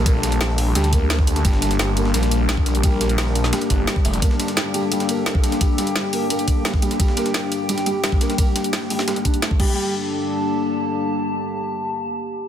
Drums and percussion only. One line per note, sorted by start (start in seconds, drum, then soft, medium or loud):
0.06 kick loud
0.06 closed hi-hat medium
0.06 ride medium
0.23 snare soft
0.23 closed hi-hat medium
0.23 ride medium
0.32 closed hi-hat soft
0.41 snare loud
0.41 closed hi-hat loud
0.41 ride medium
0.49 snare soft
0.58 closed hi-hat medium
0.58 open hi-hat medium
0.75 closed hi-hat loud
0.75 ride medium
0.84 closed hi-hat soft
0.93 kick medium
0.93 closed hi-hat medium
0.93 ride medium
1.10 snare loud
1.10 closed hi-hat medium
1.10 ride medium
1.19 kick loud
1.19 snare soft
1.27 closed hi-hat medium
1.27 ride medium
1.36 snare soft
1.36 closed hi-hat soft
1.45 kick loud
1.45 closed hi-hat medium
1.45 ride medium
1.53 snare soft
1.62 snare medium
1.62 closed hi-hat medium
1.62 ride medium
1.71 snare soft
1.71 closed hi-hat soft
1.79 snare loud
1.79 closed hi-hat loud
1.79 ride medium
1.97 closed hi-hat medium
1.97 ride medium
2.05 snare soft
2.14 closed hi-hat medium
2.14 ride medium
2.23 snare soft
2.23 closed hi-hat soft
2.31 closed hi-hat medium
2.31 ride medium
2.49 snare loud
2.49 closed hi-hat medium
2.49 ride medium
2.57 kick loud
2.66 snare medium
2.66 closed hi-hat medium
2.66 ride medium
2.75 closed hi-hat soft
2.83 kick loud
2.83 closed hi-hat medium
2.83 ride medium
3.01 snare medium
3.01 closed hi-hat medium
3.01 ride medium
3.09 closed hi-hat soft
3.18 snare loud
3.18 closed hi-hat loud
3.18 ride medium
3.27 snare soft
3.35 snare soft
3.35 closed hi-hat medium
3.35 ride medium
3.44 snare soft
3.53 snare loud
3.53 closed hi-hat medium
3.53 ride medium
3.61 closed hi-hat soft
3.70 kick medium
3.70 closed hi-hat medium
3.70 ride medium
3.87 snare loud
3.87 closed hi-hat medium
3.87 ride medium
3.96 kick loud
3.96 snare soft
4.05 closed hi-hat medium
4.05 ride medium
4.14 snare soft
4.14 closed hi-hat soft
4.22 kick loud
4.22 closed hi-hat medium
4.22 ride medium
4.31 snare soft
4.40 snare medium
4.40 closed hi-hat medium
4.40 ride medium
4.48 snare soft
4.48 closed hi-hat soft
4.57 snare loud
4.57 closed hi-hat medium
4.57 ride medium
4.74 closed hi-hat medium
4.74 ride medium
4.92 closed hi-hat medium
4.92 ride medium
5.00 snare soft
5.00 closed hi-hat soft
5.09 closed hi-hat medium
5.09 ride medium
5.26 snare loud
5.26 closed hi-hat medium
5.26 ride medium
5.35 kick loud
5.44 snare medium
5.44 closed hi-hat medium
5.44 ride medium
5.52 snare soft
5.52 closed hi-hat soft
5.61 kick loud
5.61 closed hi-hat medium
5.61 ride medium
5.78 snare soft
5.78 closed hi-hat medium
5.78 ride medium
5.87 closed hi-hat soft
5.96 snare loud
5.96 closed hi-hat medium
5.96 ride medium
6.04 snare soft
6.13 closed hi-hat medium
6.13 open hi-hat medium
6.30 closed hi-hat medium
6.30 ride medium
6.39 closed hi-hat soft
6.48 kick medium
6.48 closed hi-hat medium
6.48 ride medium
6.65 snare loud
6.65 closed hi-hat medium
6.65 ride medium
6.74 kick loud
6.74 snare soft
6.82 closed hi-hat medium
6.82 ride medium
6.91 snare soft
6.91 closed hi-hat soft
7.00 kick loud
7.00 closed hi-hat medium
7.00 ride medium
7.08 snare soft
7.17 snare medium
7.17 closed hi-hat medium
7.17 ride medium
7.26 snare soft
7.26 closed hi-hat soft
7.34 snare loud
7.34 closed hi-hat medium
7.34 ride medium
7.52 closed hi-hat medium
7.52 ride medium
7.69 closed hi-hat medium
7.69 ride medium
7.78 snare soft
7.78 closed hi-hat soft
7.86 closed hi-hat medium
7.86 ride medium
8.04 snare loud
8.04 closed hi-hat medium
8.04 ride medium
8.12 kick loud
8.21 snare medium
8.21 closed hi-hat medium
8.21 ride medium
8.30 snare soft
8.30 closed hi-hat soft
8.38 kick loud
8.38 closed hi-hat medium
8.38 ride medium
8.56 snare medium
8.56 closed hi-hat medium
8.56 ride medium
8.64 closed hi-hat soft
8.73 snare loud
8.73 closed hi-hat loud
8.73 ride medium
8.82 snare soft
8.90 closed hi-hat medium
8.90 open hi-hat medium
8.99 snare soft
9.08 snare loud
9.08 closed hi-hat medium
9.08 ride medium
9.16 closed hi-hat soft
9.25 kick medium
9.25 closed hi-hat medium
9.25 ride medium
9.34 closed hi-hat soft
9.42 snare loud
9.42 closed hi-hat medium
9.42 ride medium
9.51 kick loud
9.60 kick loud
9.60 crash medium